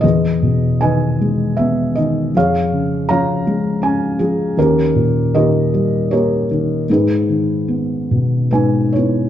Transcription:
<<
  \new Staff \with { instrumentName = "Felt piano" } { \time 3/4 \key gis \minor \tempo 4 = 78 << { dis''4 gis''4 e''8 dis''8 | eis''4 ais''4 gis''8 gis'8 | ais'4 dis''4 cis''4 | b'2 <b' gis''>8 <b' cis''>8 | } \\ { <gis' b'>4 <b' dis''>4. r8 | <gis' cis''>4 <cis'' eis''>4. r8 | <cis' g'>4 <g' ais'>4 <g' ais'>4 | <dis' gis'>2 dis'8 e'8 | } >> }
  \new Staff \with { instrumentName = "Felt piano" } { \clef bass \time 3/4 \key gis \minor e,8 b,8 dis8 gis8 b8 dis8 | eis,8 cis8 eis8 gis8 cis'8 eis8 | dis,8 ais,8 dis8 g8 ais8 dis8 | gis,8 dis8 b8 b,8 gis,8 b8 | }
>>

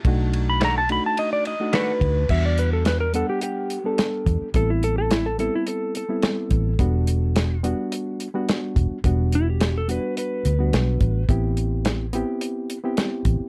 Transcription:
<<
  \new Staff \with { instrumentName = "Electric slide guitar" } { \time 4/4 \key e \minor \tempo 4 = 107 r8. b''16 ais''16 a''16 b''16 a''16 dis''16 d''16 dis''8 b'4 | e''16 d''16 b'16 a'16 b'16 ais'16 a'16 g'16 g'4 r4 | a'16 e'16 a'16 a'16 e'16 a'16 a'16 e'16 a'8 a'4.~ | a'4. r2 r8 |
r8 e'16 g'8 a'16 b'8 b'2 | r1 | }
  \new Staff \with { instrumentName = "Reed electric piano" } { \time 4/4 \key e \minor <a d' dis' fis'>4~ <a d' dis' fis'>16 r16 <a d' dis' fis'>4 r16 <a d' dis' fis'>4 r16 | <g b d' fis'>4~ <g b d' fis'>16 r16 <g b d' fis''>4 r16 <g b d' a'>4 r16 | <g b c' e'>4~ <g b c' e'>16 r16 <g b c' e'>4 r16 <g b c' e'>4 r16 | <g b d' fis'>4~ <g b d' fis'>16 r16 <g b d' fis'>4 r16 <g b d' fis'>4 r16 |
<g b d' fis'>4~ <g b d' fis'>16 r16 <g b d' fis'>4 r16 <g b d' fis'>4 r16 | <b c' e' g'>4~ <b c' e' g'>16 r16 <b c' e' g'>4 r16 <b c' e' g'>4 r16 | }
  \new Staff \with { instrumentName = "Clean electric guitar" } { \time 4/4 \key e \minor r4 <dis a d' fis'>8 r4. <dis a d' fis'>8 r8 | r1 | r1 | r1 |
r1 | r1 | }
  \new Staff \with { instrumentName = "Fingered electric bass" } { \clef bass \time 4/4 \key e \minor b,,2 r4. d,8 | e,2 r4. e,16 r16 | a,,2 r4. a,,8 | e,,2 r4. e,,16 r16 |
e,,2 r8 d,8 b,,8 a,,8 | a,,2 r4. a,,16 r16 | }
  \new DrumStaff \with { instrumentName = "Drums" } \drummode { \time 4/4 <bd cymr>8 cymr8 <cymr sn>8 cymr8 cymr8 cymr8 <cymr sn>8 <bd cymr>8 | <cymc bd>8 hh8 <hh sn>8 hh8 hh8 hh8 <hh sn>8 <hh bd>8 | <hh bd>8 hh8 <hh sn>8 hh8 hh8 hh8 <hh sn>8 <hh bd>8 | <hh bd>8 hh8 <hh sn>8 hh8 hh8 hh8 <hh sn>8 <hh bd>8 |
<hh bd>8 hh8 <hh sn>8 hh8 hh8 hh8 <hh sn>8 <hh bd>8 | <hh bd>8 hh8 <hh sn>8 hh8 hh8 hh8 <hh sn>8 <hh bd>8 | }
>>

